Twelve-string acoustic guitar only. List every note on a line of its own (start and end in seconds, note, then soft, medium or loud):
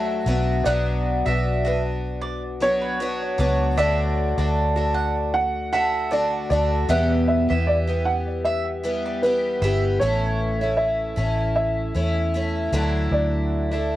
0.00 0.25 F#3 medium
0.00 0.27 A3 medium
0.00 0.27 D4 medium
0.00 0.27 F#4 medium
0.26 0.65 F#3 medium
0.26 0.65 B3 medium
0.26 0.66 D4 medium
0.26 0.66 F#4 medium
0.65 1.26 B2 medium
0.65 1.26 F#3 medium
0.65 1.27 B3 medium
0.65 1.26 D4 medium
0.65 1.25 F#4 medium
1.26 1.66 B3 soft
1.26 1.65 D4 medium
1.26 1.63 F#4 medium
1.65 2.60 B3 soft
1.65 2.62 D4 medium
1.65 2.63 F#4 medium
2.60 2.99 F#3 medium
2.60 3.00 B3 medium
2.60 3.01 D4 medium
2.60 3.01 F#4 medium
3.00 3.37 F#3 medium
3.00 3.38 B3 medium
3.00 3.39 D4 medium
3.00 3.39 F#4 medium
3.38 3.77 F#3 medium
3.38 3.78 B3 medium
3.38 3.78 D4 medium
3.38 3.78 F#4 medium
3.77 4.38 D3 medium
3.77 4.39 A3 medium
3.77 4.38 D4 medium
3.77 4.37 F#4 medium
4.38 4.77 A3 soft
4.38 4.76 D4 medium
4.38 4.75 F#4 medium
4.76 5.72 A3 soft
4.76 5.73 D4 medium
4.76 5.72 F#4 medium
5.73 6.09 D3 medium
5.73 6.11 A3 medium
5.73 6.12 D4 medium
5.73 6.12 F#4 medium
6.11 6.49 D3 medium
6.11 6.50 A3 medium
6.11 6.51 D4 medium
6.11 6.52 F#4 medium
6.50 6.89 D3 medium
6.50 6.89 A3 medium
6.50 6.90 D4 medium
6.50 6.90 F#4 medium
6.89 7.50 E2 medium
6.89 7.50 B2 medium
6.89 7.50 E3 medium
6.89 7.50 G3 medium
6.89 7.49 B3 medium
6.89 7.47 G4 medium
7.49 7.89 E3 soft
7.49 7.88 G3 soft
7.49 7.87 B3 medium
7.49 7.86 G4 medium
7.87 8.83 E3 soft
7.87 8.83 G3 soft
7.87 8.84 B3 soft
7.87 8.84 G4 soft
8.84 9.22 E3 medium
8.84 9.23 G3 medium
8.84 9.23 B3 medium
8.84 9.24 G4 medium
9.23 9.61 E3 medium
9.23 9.62 G3 medium
9.23 9.63 B3 medium
9.23 9.63 G4 medium
9.62 10.01 E3 medium
9.62 10.02 G3 medium
9.62 10.02 B3 medium
9.62 10.02 G4 medium
10.01 10.61 A2 medium
10.01 10.62 E3 medium
10.01 10.62 A3 medium
10.01 10.62 C#4 medium
10.01 10.60 E4 medium
10.61 11.16 A3 soft
10.61 11.17 C#4 soft
10.61 11.18 E4 soft
11.16 11.94 E3 medium
11.16 11.95 A3 medium
11.16 11.95 C#4 medium
11.16 11.96 E4 medium
11.95 12.33 E3 soft
11.95 12.34 A3 medium
11.95 12.34 C#4 medium
11.95 12.35 E4 medium
12.34 12.73 E3 soft
12.34 12.72 A3 medium
12.34 12.74 C#4 medium
12.34 12.73 E4 medium
12.72 13.74 D3 medium
12.72 13.72 F#3 medium
12.72 13.74 A3 medium
12.72 13.72 D4 medium
12.72 13.70 E4 medium
13.71 13.96 A3 soft
13.71 13.96 D4 soft
13.71 13.96 E4 soft